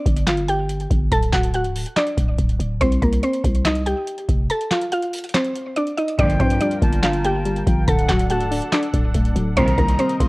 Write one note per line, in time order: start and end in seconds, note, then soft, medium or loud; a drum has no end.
0.00 0.25 D4 medium
0.00 0.24 D5 medium
0.06 0.87 G1 loud
0.06 kick medium
0.06 closed hi-hat medium
0.17 closed hi-hat medium
0.27 0.44 F4 medium
0.27 0.44 F5 medium
0.27 snare loud
0.27 clap medium
0.27 closed hi-hat medium
0.37 closed hi-hat medium
0.48 1.08 G4 medium
0.48 1.08 G5 medium
0.48 closed hi-hat medium
0.69 closed hi-hat medium
0.80 closed hi-hat soft
0.90 1.11 G1 loud
0.90 kick loud
0.90 closed hi-hat medium
1.12 1.32 D1 loud
1.12 1.29 A4 medium
1.12 1.28 A5 loud
1.12 kick loud
1.12 closed hi-hat loud
1.23 closed hi-hat medium
1.33 1.66 D1 loud
1.33 1.50 F#4 medium
1.33 1.49 F#5 loud
1.33 kick loud
1.33 snare medium
1.33 clap medium
1.33 closed hi-hat medium
1.43 closed hi-hat medium
1.54 1.94 F#4 medium
1.54 1.94 F#5 medium
1.54 closed hi-hat medium
1.64 1.76 C1 loud
1.64 closed hi-hat medium
1.75 1.85 D1 loud
1.75 open hi-hat medium
1.86 closed hi-hat medium
1.96 2.77 D4 medium
1.96 2.77 D5 medium
1.96 snare loud
1.96 clap medium
1.96 closed hi-hat medium
2.06 closed hi-hat medium
2.17 2.38 D1 loud
2.17 kick loud
2.17 closed hi-hat medium
2.38 2.59 D1 loud
2.38 kick medium
2.38 closed hi-hat medium
2.49 closed hi-hat soft
2.59 2.80 D1 loud
2.59 closed hi-hat medium
2.81 3.01 C2 loud
2.81 2.98 C4 medium
2.81 2.97 C5 loud
2.81 kick loud
2.81 closed hi-hat medium
2.92 closed hi-hat medium
3.02 3.22 C2 loud
3.02 3.19 A#3 medium
3.02 3.18 A#4 medium
3.02 kick medium
3.02 closed hi-hat medium
3.12 closed hi-hat medium
3.23 3.63 C4 medium
3.23 3.63 C5 medium
3.23 closed hi-hat medium
3.33 closed hi-hat medium
3.44 3.95 C2 loud
3.44 kick medium
3.44 closed hi-hat medium
3.55 closed hi-hat medium
3.65 3.82 D#4 medium
3.65 3.82 D#5 medium
3.65 snare loud
3.65 clap medium
3.65 closed hi-hat medium
3.75 closed hi-hat medium
3.86 4.46 G4 medium
3.86 4.46 G5 medium
3.86 closed hi-hat medium
4.07 closed hi-hat medium
4.18 closed hi-hat soft
4.29 4.50 F1 loud
4.29 kick loud
4.29 closed hi-hat medium
4.50 4.67 A4 medium
4.50 4.66 A5 loud
4.50 closed hi-hat medium
4.61 closed hi-hat medium
4.71 4.88 F4 medium
4.71 4.87 F5 medium
4.71 snare medium
4.71 clap medium
4.71 closed hi-hat medium
4.81 closed hi-hat medium
4.92 5.32 F4 medium
4.92 5.32 F5 medium
4.92 closed hi-hat medium
5.02 closed hi-hat medium
5.13 closed hi-hat medium
5.13 open hi-hat medium
5.18 closed hi-hat medium
5.24 closed hi-hat medium
5.29 closed hi-hat medium
5.34 5.74 C4 medium
5.34 5.74 C5 medium
5.34 snare loud
5.34 clap medium
5.34 closed hi-hat medium
5.44 closed hi-hat medium
5.55 closed hi-hat medium
5.76 5.93 D4 medium
5.76 5.93 D5 medium
5.76 closed hi-hat medium
5.87 closed hi-hat soft
5.97 6.15 D#4 medium
5.97 6.14 D#5 medium
5.97 closed hi-hat medium
6.08 closed hi-hat medium
6.19 6.39 G1 loud
6.19 6.59 D2 loud
6.19 7.24 G2 medium
6.19 6.59 A#2 loud
6.19 6.59 F3 loud
6.19 6.36 D4 medium
6.19 7.86 F4 medium
6.19 7.86 A#4 medium
6.19 6.35 D5 loud
6.19 7.86 G5 medium
6.19 6.78 G5 loud
6.19 kick loud
6.19 closed hi-hat medium
6.30 closed hi-hat medium
6.40 6.60 G2 loud
6.40 7.45 F3 medium
6.40 6.57 C4 medium
6.40 6.56 C5 medium
6.40 kick loud
6.40 closed hi-hat medium
6.50 closed hi-hat medium
6.61 7.44 G3 medium
6.61 7.01 D4 medium
6.61 7.01 D5 medium
6.61 closed hi-hat loud
6.71 closed hi-hat medium
6.82 7.63 G1 loud
6.82 7.23 A#3 loud
6.82 7.63 A5 medium
6.82 kick loud
6.82 closed hi-hat medium
6.93 closed hi-hat medium
7.03 7.88 D4 medium
7.03 7.20 F4 medium
7.03 7.20 F5 medium
7.03 snare loud
7.03 clap medium
7.03 closed hi-hat medium
7.13 closed hi-hat medium
7.24 7.88 A#3 medium
7.24 7.84 G4 medium
7.24 7.84 G5 medium
7.24 closed hi-hat medium
7.45 7.88 G3 loud
7.45 closed hi-hat medium
7.56 closed hi-hat soft
7.67 7.87 G1 loud
7.67 7.88 F3 medium
7.67 7.87 G5 medium
7.67 kick loud
7.67 closed hi-hat medium
7.87 8.08 D1 loud
7.87 8.93 D3 medium
7.87 9.55 D4 medium
7.87 9.55 A4 medium
7.87 8.05 A4 medium
7.87 9.55 F#5 medium
7.87 8.27 F#5 loud
7.87 8.04 A5 loud
7.87 kick loud
7.87 closed hi-hat loud
7.99 closed hi-hat medium
8.09 8.42 D1 loud
8.09 9.14 F#3 medium
8.09 8.26 F#4 medium
8.09 8.25 F#5 medium
8.09 kick loud
8.09 snare loud
8.09 clap medium
8.09 closed hi-hat medium
8.19 closed hi-hat medium
8.29 9.13 A3 medium
8.29 8.70 F#4 medium
8.29 8.70 F#5 medium
8.29 8.69 A5 medium
8.29 closed hi-hat loud
8.40 8.53 C1 loud
8.40 closed hi-hat medium
8.51 8.61 D1 loud
8.51 8.92 D4 loud
8.51 open hi-hat medium
8.62 closed hi-hat medium
8.72 9.53 D4 medium
8.72 9.57 D5 medium
8.72 9.53 D5 medium
8.72 snare loud
8.72 clap medium
8.72 closed hi-hat medium
8.82 closed hi-hat medium
8.93 9.14 D1 loud
8.93 9.57 D4 medium
8.93 kick loud
8.93 closed hi-hat medium
9.14 9.35 D1 loud
9.14 9.57 A3 loud
9.14 kick loud
9.14 closed hi-hat medium
9.25 closed hi-hat soft
9.36 9.56 D1 loud
9.36 9.57 F#3 medium
9.36 closed hi-hat medium
9.57 9.77 C2 loud
9.57 9.97 C2 loud
9.57 9.97 A#2 loud
9.57 10.28 C3 loud
9.57 9.97 D#3 loud
9.57 10.28 C4 medium
9.57 9.74 C4 medium
9.57 10.28 A#4 medium
9.57 9.73 C5 loud
9.57 10.28 D#5 medium
9.57 10.16 A#5 loud
9.57 kick loud
9.57 closed hi-hat medium
9.68 closed hi-hat medium
9.77 9.98 C2 loud
9.77 10.28 D#3 medium
9.77 9.95 A#3 medium
9.77 9.94 A#4 medium
9.77 kick loud
9.77 closed hi-hat medium
9.88 closed hi-hat medium
9.99 10.28 G3 medium
9.99 10.28 C4 medium
9.99 10.28 C5 medium
9.99 closed hi-hat medium
10.09 closed hi-hat medium
10.20 10.28 C2 loud
10.20 10.28 A#3 loud
10.20 10.28 C6 loud
10.20 kick loud
10.20 closed hi-hat medium